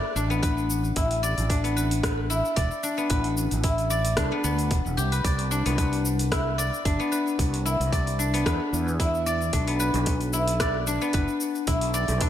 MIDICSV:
0, 0, Header, 1, 4, 480
1, 0, Start_track
1, 0, Tempo, 535714
1, 860, Time_signature, 4, 2, 24, 8
1, 11015, End_track
2, 0, Start_track
2, 0, Title_t, "Guzheng"
2, 0, Program_c, 0, 107
2, 0, Note_on_c, 0, 59, 77
2, 0, Note_on_c, 0, 62, 83
2, 0, Note_on_c, 0, 64, 74
2, 0, Note_on_c, 0, 71, 78
2, 0, Note_on_c, 0, 74, 104
2, 139, Note_off_c, 0, 62, 0
2, 142, Note_on_c, 0, 62, 80
2, 265, Note_off_c, 0, 59, 0
2, 269, Note_on_c, 0, 59, 77
2, 377, Note_off_c, 0, 71, 0
2, 381, Note_on_c, 0, 71, 86
2, 860, Note_off_c, 0, 64, 0
2, 863, Note_on_c, 0, 64, 82
2, 1098, Note_off_c, 0, 74, 0
2, 1101, Note_on_c, 0, 74, 108
2, 1336, Note_off_c, 0, 62, 0
2, 1340, Note_on_c, 0, 62, 82
2, 1465, Note_off_c, 0, 59, 0
2, 1468, Note_on_c, 0, 59, 75
2, 1577, Note_off_c, 0, 71, 0
2, 1581, Note_on_c, 0, 71, 76
2, 2056, Note_off_c, 0, 64, 0
2, 2059, Note_on_c, 0, 64, 79
2, 2292, Note_off_c, 0, 74, 0
2, 2296, Note_on_c, 0, 74, 106
2, 2534, Note_off_c, 0, 62, 0
2, 2537, Note_on_c, 0, 62, 74
2, 2663, Note_off_c, 0, 59, 0
2, 2666, Note_on_c, 0, 59, 76
2, 2773, Note_off_c, 0, 71, 0
2, 2777, Note_on_c, 0, 71, 78
2, 3254, Note_off_c, 0, 64, 0
2, 3258, Note_on_c, 0, 64, 82
2, 3493, Note_off_c, 0, 74, 0
2, 3497, Note_on_c, 0, 74, 98
2, 3732, Note_off_c, 0, 62, 0
2, 3735, Note_on_c, 0, 62, 85
2, 3865, Note_off_c, 0, 59, 0
2, 3868, Note_on_c, 0, 59, 73
2, 3973, Note_off_c, 0, 59, 0
2, 3977, Note_on_c, 0, 59, 78
2, 4455, Note_on_c, 0, 67, 97
2, 4584, Note_off_c, 0, 71, 0
2, 4588, Note_on_c, 0, 71, 72
2, 4694, Note_off_c, 0, 74, 0
2, 4698, Note_on_c, 0, 74, 95
2, 4933, Note_off_c, 0, 62, 0
2, 4937, Note_on_c, 0, 62, 82
2, 5065, Note_off_c, 0, 59, 0
2, 5069, Note_on_c, 0, 59, 77
2, 5175, Note_off_c, 0, 71, 0
2, 5178, Note_on_c, 0, 71, 75
2, 5598, Note_off_c, 0, 64, 0
2, 5659, Note_on_c, 0, 64, 87
2, 5894, Note_off_c, 0, 74, 0
2, 5897, Note_on_c, 0, 74, 97
2, 6136, Note_off_c, 0, 62, 0
2, 6139, Note_on_c, 0, 62, 88
2, 6265, Note_off_c, 0, 59, 0
2, 6268, Note_on_c, 0, 59, 78
2, 6374, Note_off_c, 0, 71, 0
2, 6377, Note_on_c, 0, 71, 75
2, 6564, Note_off_c, 0, 67, 0
2, 6855, Note_off_c, 0, 64, 0
2, 6859, Note_on_c, 0, 64, 75
2, 7096, Note_off_c, 0, 74, 0
2, 7100, Note_on_c, 0, 74, 100
2, 7334, Note_off_c, 0, 62, 0
2, 7338, Note_on_c, 0, 62, 75
2, 7466, Note_off_c, 0, 59, 0
2, 7469, Note_on_c, 0, 59, 84
2, 7574, Note_off_c, 0, 71, 0
2, 7578, Note_on_c, 0, 71, 85
2, 8057, Note_off_c, 0, 64, 0
2, 8060, Note_on_c, 0, 64, 85
2, 8296, Note_off_c, 0, 74, 0
2, 8299, Note_on_c, 0, 74, 106
2, 8536, Note_off_c, 0, 62, 0
2, 8540, Note_on_c, 0, 62, 79
2, 8666, Note_off_c, 0, 59, 0
2, 8669, Note_on_c, 0, 59, 78
2, 8775, Note_off_c, 0, 71, 0
2, 8778, Note_on_c, 0, 71, 82
2, 9254, Note_off_c, 0, 64, 0
2, 9258, Note_on_c, 0, 64, 76
2, 9497, Note_off_c, 0, 74, 0
2, 9501, Note_on_c, 0, 74, 105
2, 9736, Note_off_c, 0, 62, 0
2, 9739, Note_on_c, 0, 62, 79
2, 9866, Note_off_c, 0, 59, 0
2, 9869, Note_on_c, 0, 59, 77
2, 9978, Note_off_c, 0, 71, 0
2, 9981, Note_on_c, 0, 71, 88
2, 10455, Note_off_c, 0, 64, 0
2, 10459, Note_on_c, 0, 64, 83
2, 10693, Note_off_c, 0, 74, 0
2, 10697, Note_on_c, 0, 74, 105
2, 10937, Note_off_c, 0, 62, 0
2, 10941, Note_on_c, 0, 62, 83
2, 11015, Note_off_c, 0, 59, 0
2, 11015, Note_off_c, 0, 62, 0
2, 11015, Note_off_c, 0, 64, 0
2, 11015, Note_off_c, 0, 71, 0
2, 11015, Note_off_c, 0, 74, 0
2, 11015, End_track
3, 0, Start_track
3, 0, Title_t, "Fretless electric bass"
3, 0, Program_c, 1, 35
3, 139, Note_on_c, 1, 33, 95
3, 830, Note_off_c, 1, 33, 0
3, 864, Note_on_c, 1, 33, 100
3, 1197, Note_off_c, 1, 33, 0
3, 1233, Note_on_c, 1, 33, 97
3, 2156, Note_off_c, 1, 33, 0
3, 2304, Note_on_c, 1, 28, 82
3, 2410, Note_off_c, 1, 28, 0
3, 2782, Note_on_c, 1, 33, 99
3, 3116, Note_off_c, 1, 33, 0
3, 3149, Note_on_c, 1, 33, 92
3, 3710, Note_off_c, 1, 33, 0
3, 3742, Note_on_c, 1, 36, 97
3, 3849, Note_off_c, 1, 36, 0
3, 3979, Note_on_c, 1, 38, 90
3, 4216, Note_off_c, 1, 38, 0
3, 4221, Note_on_c, 1, 28, 89
3, 4329, Note_off_c, 1, 28, 0
3, 4350, Note_on_c, 1, 28, 91
3, 4441, Note_off_c, 1, 28, 0
3, 4460, Note_on_c, 1, 36, 99
3, 4663, Note_off_c, 1, 36, 0
3, 4700, Note_on_c, 1, 36, 98
3, 5035, Note_off_c, 1, 36, 0
3, 5070, Note_on_c, 1, 36, 94
3, 5995, Note_off_c, 1, 36, 0
3, 6140, Note_on_c, 1, 31, 90
3, 6248, Note_off_c, 1, 31, 0
3, 6623, Note_on_c, 1, 36, 106
3, 6957, Note_off_c, 1, 36, 0
3, 6987, Note_on_c, 1, 36, 96
3, 7549, Note_off_c, 1, 36, 0
3, 7581, Note_on_c, 1, 40, 100
3, 7689, Note_off_c, 1, 40, 0
3, 7818, Note_on_c, 1, 40, 94
3, 8509, Note_off_c, 1, 40, 0
3, 8542, Note_on_c, 1, 35, 104
3, 8876, Note_off_c, 1, 35, 0
3, 8905, Note_on_c, 1, 35, 101
3, 9832, Note_off_c, 1, 35, 0
3, 9983, Note_on_c, 1, 30, 91
3, 10090, Note_off_c, 1, 30, 0
3, 10463, Note_on_c, 1, 35, 102
3, 10797, Note_off_c, 1, 35, 0
3, 10827, Note_on_c, 1, 35, 102
3, 11015, Note_off_c, 1, 35, 0
3, 11015, End_track
4, 0, Start_track
4, 0, Title_t, "Drums"
4, 147, Note_on_c, 9, 82, 77
4, 237, Note_off_c, 9, 82, 0
4, 279, Note_on_c, 9, 82, 37
4, 368, Note_off_c, 9, 82, 0
4, 385, Note_on_c, 9, 36, 118
4, 385, Note_on_c, 9, 46, 68
4, 389, Note_on_c, 9, 82, 48
4, 475, Note_off_c, 9, 36, 0
4, 475, Note_off_c, 9, 46, 0
4, 479, Note_off_c, 9, 82, 0
4, 518, Note_on_c, 9, 82, 30
4, 607, Note_off_c, 9, 82, 0
4, 627, Note_on_c, 9, 82, 83
4, 717, Note_off_c, 9, 82, 0
4, 757, Note_on_c, 9, 82, 35
4, 846, Note_off_c, 9, 82, 0
4, 860, Note_on_c, 9, 46, 65
4, 865, Note_on_c, 9, 36, 107
4, 865, Note_on_c, 9, 82, 48
4, 950, Note_off_c, 9, 46, 0
4, 954, Note_off_c, 9, 36, 0
4, 954, Note_off_c, 9, 82, 0
4, 992, Note_on_c, 9, 46, 44
4, 1082, Note_off_c, 9, 46, 0
4, 1107, Note_on_c, 9, 82, 85
4, 1197, Note_off_c, 9, 82, 0
4, 1234, Note_on_c, 9, 46, 30
4, 1238, Note_on_c, 9, 82, 35
4, 1323, Note_off_c, 9, 46, 0
4, 1328, Note_off_c, 9, 82, 0
4, 1343, Note_on_c, 9, 36, 99
4, 1345, Note_on_c, 9, 46, 58
4, 1349, Note_on_c, 9, 82, 48
4, 1433, Note_off_c, 9, 36, 0
4, 1434, Note_off_c, 9, 46, 0
4, 1438, Note_off_c, 9, 82, 0
4, 1475, Note_on_c, 9, 46, 30
4, 1480, Note_on_c, 9, 82, 32
4, 1565, Note_off_c, 9, 46, 0
4, 1569, Note_off_c, 9, 82, 0
4, 1590, Note_on_c, 9, 82, 79
4, 1680, Note_off_c, 9, 82, 0
4, 1714, Note_on_c, 9, 46, 44
4, 1718, Note_on_c, 9, 82, 35
4, 1804, Note_off_c, 9, 46, 0
4, 1808, Note_off_c, 9, 82, 0
4, 1823, Note_on_c, 9, 36, 108
4, 1825, Note_on_c, 9, 37, 79
4, 1825, Note_on_c, 9, 46, 66
4, 1830, Note_on_c, 9, 82, 47
4, 1913, Note_off_c, 9, 36, 0
4, 1915, Note_off_c, 9, 37, 0
4, 1915, Note_off_c, 9, 46, 0
4, 1919, Note_off_c, 9, 82, 0
4, 2066, Note_on_c, 9, 82, 81
4, 2155, Note_off_c, 9, 82, 0
4, 2196, Note_on_c, 9, 82, 36
4, 2285, Note_off_c, 9, 82, 0
4, 2299, Note_on_c, 9, 46, 61
4, 2302, Note_on_c, 9, 36, 120
4, 2303, Note_on_c, 9, 82, 49
4, 2389, Note_off_c, 9, 46, 0
4, 2392, Note_off_c, 9, 36, 0
4, 2393, Note_off_c, 9, 82, 0
4, 2432, Note_on_c, 9, 82, 33
4, 2521, Note_off_c, 9, 82, 0
4, 2540, Note_on_c, 9, 82, 85
4, 2630, Note_off_c, 9, 82, 0
4, 2670, Note_on_c, 9, 82, 34
4, 2759, Note_off_c, 9, 82, 0
4, 2775, Note_on_c, 9, 46, 66
4, 2780, Note_on_c, 9, 82, 45
4, 2782, Note_on_c, 9, 36, 99
4, 2865, Note_off_c, 9, 46, 0
4, 2869, Note_off_c, 9, 82, 0
4, 2871, Note_off_c, 9, 36, 0
4, 2904, Note_on_c, 9, 46, 43
4, 2994, Note_off_c, 9, 46, 0
4, 3021, Note_on_c, 9, 82, 83
4, 3111, Note_off_c, 9, 82, 0
4, 3148, Note_on_c, 9, 46, 31
4, 3152, Note_on_c, 9, 82, 34
4, 3238, Note_off_c, 9, 46, 0
4, 3242, Note_off_c, 9, 82, 0
4, 3257, Note_on_c, 9, 46, 61
4, 3261, Note_on_c, 9, 36, 99
4, 3262, Note_on_c, 9, 82, 43
4, 3347, Note_off_c, 9, 46, 0
4, 3351, Note_off_c, 9, 36, 0
4, 3351, Note_off_c, 9, 82, 0
4, 3388, Note_on_c, 9, 46, 29
4, 3392, Note_on_c, 9, 82, 30
4, 3478, Note_off_c, 9, 46, 0
4, 3482, Note_off_c, 9, 82, 0
4, 3499, Note_on_c, 9, 82, 85
4, 3588, Note_off_c, 9, 82, 0
4, 3625, Note_on_c, 9, 46, 42
4, 3630, Note_on_c, 9, 82, 33
4, 3715, Note_off_c, 9, 46, 0
4, 3719, Note_off_c, 9, 82, 0
4, 3735, Note_on_c, 9, 37, 84
4, 3735, Note_on_c, 9, 46, 62
4, 3739, Note_on_c, 9, 82, 50
4, 3741, Note_on_c, 9, 36, 102
4, 3824, Note_off_c, 9, 37, 0
4, 3824, Note_off_c, 9, 46, 0
4, 3829, Note_off_c, 9, 82, 0
4, 3830, Note_off_c, 9, 36, 0
4, 3980, Note_on_c, 9, 82, 85
4, 4070, Note_off_c, 9, 82, 0
4, 4108, Note_on_c, 9, 46, 30
4, 4113, Note_on_c, 9, 82, 38
4, 4198, Note_off_c, 9, 46, 0
4, 4202, Note_off_c, 9, 82, 0
4, 4218, Note_on_c, 9, 46, 63
4, 4221, Note_on_c, 9, 36, 116
4, 4222, Note_on_c, 9, 82, 44
4, 4307, Note_off_c, 9, 46, 0
4, 4310, Note_off_c, 9, 36, 0
4, 4312, Note_off_c, 9, 82, 0
4, 4357, Note_on_c, 9, 82, 33
4, 4447, Note_off_c, 9, 82, 0
4, 4463, Note_on_c, 9, 82, 84
4, 4553, Note_off_c, 9, 82, 0
4, 4588, Note_on_c, 9, 46, 30
4, 4592, Note_on_c, 9, 82, 33
4, 4678, Note_off_c, 9, 46, 0
4, 4682, Note_off_c, 9, 82, 0
4, 4700, Note_on_c, 9, 36, 98
4, 4700, Note_on_c, 9, 46, 65
4, 4705, Note_on_c, 9, 82, 45
4, 4790, Note_off_c, 9, 36, 0
4, 4790, Note_off_c, 9, 46, 0
4, 4794, Note_off_c, 9, 82, 0
4, 4828, Note_on_c, 9, 46, 43
4, 4917, Note_off_c, 9, 46, 0
4, 4941, Note_on_c, 9, 82, 78
4, 5031, Note_off_c, 9, 82, 0
4, 5070, Note_on_c, 9, 46, 30
4, 5074, Note_on_c, 9, 82, 34
4, 5159, Note_off_c, 9, 46, 0
4, 5163, Note_off_c, 9, 82, 0
4, 5180, Note_on_c, 9, 36, 95
4, 5180, Note_on_c, 9, 46, 59
4, 5184, Note_on_c, 9, 82, 42
4, 5270, Note_off_c, 9, 36, 0
4, 5270, Note_off_c, 9, 46, 0
4, 5274, Note_off_c, 9, 82, 0
4, 5311, Note_on_c, 9, 46, 30
4, 5315, Note_on_c, 9, 82, 31
4, 5401, Note_off_c, 9, 46, 0
4, 5405, Note_off_c, 9, 82, 0
4, 5423, Note_on_c, 9, 82, 80
4, 5513, Note_off_c, 9, 82, 0
4, 5550, Note_on_c, 9, 46, 44
4, 5554, Note_on_c, 9, 82, 35
4, 5639, Note_off_c, 9, 46, 0
4, 5644, Note_off_c, 9, 82, 0
4, 5661, Note_on_c, 9, 36, 104
4, 5662, Note_on_c, 9, 37, 79
4, 5662, Note_on_c, 9, 46, 65
4, 5666, Note_on_c, 9, 82, 47
4, 5751, Note_off_c, 9, 36, 0
4, 5752, Note_off_c, 9, 37, 0
4, 5752, Note_off_c, 9, 46, 0
4, 5756, Note_off_c, 9, 82, 0
4, 5907, Note_on_c, 9, 82, 83
4, 5997, Note_off_c, 9, 82, 0
4, 6038, Note_on_c, 9, 82, 35
4, 6128, Note_off_c, 9, 82, 0
4, 6142, Note_on_c, 9, 36, 112
4, 6142, Note_on_c, 9, 46, 60
4, 6146, Note_on_c, 9, 82, 45
4, 6231, Note_off_c, 9, 36, 0
4, 6232, Note_off_c, 9, 46, 0
4, 6236, Note_off_c, 9, 82, 0
4, 6277, Note_on_c, 9, 82, 32
4, 6367, Note_off_c, 9, 82, 0
4, 6383, Note_on_c, 9, 82, 81
4, 6473, Note_off_c, 9, 82, 0
4, 6518, Note_on_c, 9, 82, 33
4, 6608, Note_off_c, 9, 82, 0
4, 6622, Note_on_c, 9, 36, 95
4, 6623, Note_on_c, 9, 46, 67
4, 6627, Note_on_c, 9, 82, 46
4, 6711, Note_off_c, 9, 36, 0
4, 6713, Note_off_c, 9, 46, 0
4, 6717, Note_off_c, 9, 82, 0
4, 6754, Note_on_c, 9, 46, 45
4, 6843, Note_off_c, 9, 46, 0
4, 6868, Note_on_c, 9, 82, 75
4, 6957, Note_off_c, 9, 82, 0
4, 6996, Note_on_c, 9, 46, 30
4, 7001, Note_on_c, 9, 82, 32
4, 7086, Note_off_c, 9, 46, 0
4, 7090, Note_off_c, 9, 82, 0
4, 7102, Note_on_c, 9, 36, 92
4, 7105, Note_on_c, 9, 46, 64
4, 7109, Note_on_c, 9, 82, 44
4, 7191, Note_off_c, 9, 36, 0
4, 7194, Note_off_c, 9, 46, 0
4, 7198, Note_off_c, 9, 82, 0
4, 7233, Note_on_c, 9, 46, 31
4, 7237, Note_on_c, 9, 82, 29
4, 7322, Note_off_c, 9, 46, 0
4, 7327, Note_off_c, 9, 82, 0
4, 7346, Note_on_c, 9, 82, 78
4, 7436, Note_off_c, 9, 82, 0
4, 7476, Note_on_c, 9, 46, 42
4, 7480, Note_on_c, 9, 82, 33
4, 7565, Note_off_c, 9, 46, 0
4, 7569, Note_off_c, 9, 82, 0
4, 7582, Note_on_c, 9, 36, 105
4, 7584, Note_on_c, 9, 37, 77
4, 7584, Note_on_c, 9, 46, 68
4, 7588, Note_on_c, 9, 82, 45
4, 7672, Note_off_c, 9, 36, 0
4, 7674, Note_off_c, 9, 37, 0
4, 7674, Note_off_c, 9, 46, 0
4, 7678, Note_off_c, 9, 82, 0
4, 7828, Note_on_c, 9, 82, 80
4, 7918, Note_off_c, 9, 82, 0
4, 7957, Note_on_c, 9, 82, 34
4, 8046, Note_off_c, 9, 82, 0
4, 8062, Note_on_c, 9, 36, 111
4, 8062, Note_on_c, 9, 46, 69
4, 8066, Note_on_c, 9, 82, 41
4, 8151, Note_off_c, 9, 36, 0
4, 8152, Note_off_c, 9, 46, 0
4, 8156, Note_off_c, 9, 82, 0
4, 8195, Note_on_c, 9, 82, 29
4, 8285, Note_off_c, 9, 82, 0
4, 8304, Note_on_c, 9, 82, 78
4, 8393, Note_off_c, 9, 82, 0
4, 8436, Note_on_c, 9, 82, 33
4, 8526, Note_off_c, 9, 82, 0
4, 8538, Note_on_c, 9, 46, 71
4, 8541, Note_on_c, 9, 36, 98
4, 8543, Note_on_c, 9, 82, 41
4, 8628, Note_off_c, 9, 46, 0
4, 8631, Note_off_c, 9, 36, 0
4, 8632, Note_off_c, 9, 82, 0
4, 8669, Note_on_c, 9, 46, 46
4, 8758, Note_off_c, 9, 46, 0
4, 8780, Note_on_c, 9, 82, 73
4, 8870, Note_off_c, 9, 82, 0
4, 8905, Note_on_c, 9, 46, 34
4, 8910, Note_on_c, 9, 82, 33
4, 8995, Note_off_c, 9, 46, 0
4, 8999, Note_off_c, 9, 82, 0
4, 9015, Note_on_c, 9, 46, 65
4, 9019, Note_on_c, 9, 82, 40
4, 9022, Note_on_c, 9, 36, 90
4, 9105, Note_off_c, 9, 46, 0
4, 9109, Note_off_c, 9, 82, 0
4, 9112, Note_off_c, 9, 36, 0
4, 9144, Note_on_c, 9, 46, 31
4, 9149, Note_on_c, 9, 82, 28
4, 9234, Note_off_c, 9, 46, 0
4, 9238, Note_off_c, 9, 82, 0
4, 9257, Note_on_c, 9, 82, 76
4, 9346, Note_off_c, 9, 82, 0
4, 9386, Note_on_c, 9, 46, 47
4, 9390, Note_on_c, 9, 82, 32
4, 9475, Note_off_c, 9, 46, 0
4, 9480, Note_off_c, 9, 82, 0
4, 9497, Note_on_c, 9, 37, 78
4, 9497, Note_on_c, 9, 46, 69
4, 9501, Note_on_c, 9, 82, 44
4, 9503, Note_on_c, 9, 36, 97
4, 9587, Note_off_c, 9, 37, 0
4, 9587, Note_off_c, 9, 46, 0
4, 9591, Note_off_c, 9, 82, 0
4, 9592, Note_off_c, 9, 36, 0
4, 9740, Note_on_c, 9, 82, 79
4, 9830, Note_off_c, 9, 82, 0
4, 9870, Note_on_c, 9, 82, 34
4, 9960, Note_off_c, 9, 82, 0
4, 9974, Note_on_c, 9, 46, 68
4, 9978, Note_on_c, 9, 82, 43
4, 9982, Note_on_c, 9, 36, 104
4, 10064, Note_off_c, 9, 46, 0
4, 10068, Note_off_c, 9, 82, 0
4, 10072, Note_off_c, 9, 36, 0
4, 10108, Note_on_c, 9, 82, 30
4, 10198, Note_off_c, 9, 82, 0
4, 10219, Note_on_c, 9, 82, 79
4, 10309, Note_off_c, 9, 82, 0
4, 10351, Note_on_c, 9, 82, 33
4, 10440, Note_off_c, 9, 82, 0
4, 10458, Note_on_c, 9, 46, 69
4, 10462, Note_on_c, 9, 36, 103
4, 10462, Note_on_c, 9, 82, 47
4, 10547, Note_off_c, 9, 46, 0
4, 10552, Note_off_c, 9, 36, 0
4, 10552, Note_off_c, 9, 82, 0
4, 10585, Note_on_c, 9, 46, 49
4, 10675, Note_off_c, 9, 46, 0
4, 10698, Note_on_c, 9, 82, 78
4, 10788, Note_off_c, 9, 82, 0
4, 10825, Note_on_c, 9, 46, 33
4, 10829, Note_on_c, 9, 82, 33
4, 10914, Note_off_c, 9, 46, 0
4, 10918, Note_off_c, 9, 82, 0
4, 10936, Note_on_c, 9, 46, 68
4, 10940, Note_on_c, 9, 82, 41
4, 10942, Note_on_c, 9, 36, 98
4, 11015, Note_off_c, 9, 36, 0
4, 11015, Note_off_c, 9, 46, 0
4, 11015, Note_off_c, 9, 82, 0
4, 11015, End_track
0, 0, End_of_file